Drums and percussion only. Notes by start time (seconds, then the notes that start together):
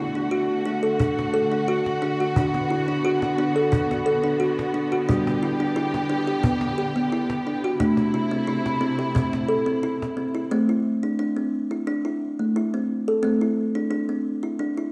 1.00 cajon bass
1.19 cajon slap
1.35 cajon slap
1.86 cajon slap
2.20 cajon slap
2.36 cajon bass
2.54 cajon slap
3.22 cajon slap
3.73 cajon bass
3.91 cajon slap
4.07 cajon slap
4.59 cajon slap
4.93 cajon slap
5.09 cajon bass
5.27 cajon slap
5.94 cajon slap
6.44 cajon bass
6.61 cajon slap
7.30 cajon slap
7.64 cajon slap
7.80 cajon bass, cajon slap
7.97 cajon slap
8.14 cajon slap
8.49 cajon slap
8.66 cajon slap
8.82 cajon slap
9.16 cajon bass
9.33 cajon slap
10.02 cajon slap